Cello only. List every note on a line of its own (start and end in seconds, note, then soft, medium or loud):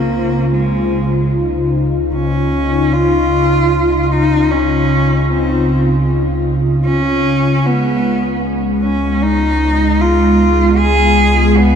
0.00 0.53 A#3 medium
0.54 1.29 G#3 medium
2.15 2.94 C#4 medium
2.93 4.03 F4 loud
4.03 4.13 F4 medium
4.12 4.52 D#4 medium
4.51 5.31 C#4 medium
5.29 6.08 C4 medium
6.85 7.68 C#4 loud
7.66 8.45 B3 medium
8.83 9.24 C#4 medium
9.22 10.02 D#4 loud
10.01 10.79 F4 medium
10.78 11.59 G#4 loud
11.58 11.75 B3 medium